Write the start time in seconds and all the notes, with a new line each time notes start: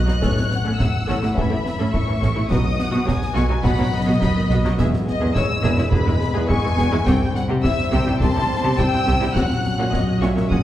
Already playing: B2 F#3 B3 F#4 B4 D#5 F#6
0.07 B2 F#3 D#4, snare
0.21 A1 A2 E3 C#4 A4 C#5, concert bass drum, snare
0.37 snare
0.51 E4 F#5, snare
0.66 A2 C#4 A4
0.79 A1 A2 A3 E4 C#5 E6, concert bass drum, snare
1.07 A1 A2 C#4 A4, snare
1.22 A2 A3 E4, snare
1.35 A1 A2 E3 C#4 A4 E5 B5, concert bass drum
1.50 A2 A3 E4
1.65 E4, snare
1.79 A2 C#4 A4
1.92 A1 A2 A3 E4 C#5 C#6, concert bass drum
2.07 A2 E3 C#4
2.21 A1 A2 C#4 A4, snare
2.36 A2 A3 E4
2.50 B1 B2 F#3 B3 F#4 D#5 D#6, concert bass drum, snare
2.79 B3 F#5, snare
2.92 B2 B3 F#4
3.07 B1 B2 F#3 D#4 B4 G#5, concert bass drum, snare
3.22 snare
3.35 B1 B2 B3 F#4 C#6, snare
3.49 B2 F#3 D#4
3.64 B1 B2 F#3 B3 F#4 F#5 B5, concert bass drum, snare
3.78 B2 F#3 D#4
3.92 B3 D#5
4.07 B2 B3 F#4
4.21 B1 B2 F#3 D#4 B4 B5, concert bass drum, snare
4.36 B2 D#3 B3
4.50 B1 B2 B3 F#4, snare
4.65 B2 F#3 D#4, snare
4.77 E1 E2 E3 G#3 B3 G#4 E5, concert bass drum, snare, crash
4.94 snare
5.07 E4 D#5, snare
5.21 E2 B3 G#4
5.35 E1 E2 G#3 B3 E4 G#4 C#5 E6, concert bass drum, snare
5.63 E1 E2 B3 G#4 B4, snare
5.78 E2 G#3 E4, snare
5.91 E1 E2 G#3 B3 G#4 B5, concert bass drum
6.06 E2 G#3 E4
6.21 E4, snare
6.34 E2 B3 G#4
6.48 E1 E2 G#3 E4 G#4 G#5 C#6, concert bass drum
6.63 E2 E3 B3
6.77 E1 E2 B3 G#4 B4, snare
6.92 E2 G#3 E4
7.06 C2 C3 G3 C4 G4 G5, concert bass drum, snare
7.35 G3 F#5, snare
7.49 C3 C4 G4
7.62 C2 C3 G3 C4 E4 C5 E5 E6, concert bass drum, snare
7.78 snare
7.92 C2 C3 C4 E4 G4 G5, snare
8.07 C3 G3 E4
8.19 C2 C3 G3 C4 G4 A5 C6, concert bass drum, snare
8.35 C3 G3 E4
8.50 G3
8.64 C3 C4 G4
8.78 C2 C3 G3 C4 E4 C5 G5 E6, concert bass drum, snare
8.93 C3 E3 C4
9.07 C2 C3 C4 E4 G4, snare
9.21 C3 G3 E4, snare
9.33 A#1 A#2 F#3 C#4 F#4 F#5 F#6, concert bass drum, snare
9.50 snare
9.64 F#3, snare
9.79 A#2 C#4 F#4
9.91 A#1 A#2 A#3 C#4 C#5 D#5, concert bass drum, snare
10.21 A#1 A#2 C#4 F#4 E5 C#6, snare
10.36 A#2 A#3 C#4, snare
10.49 A#1 A#2 C#4 F#4 F#5 D#6, concert bass drum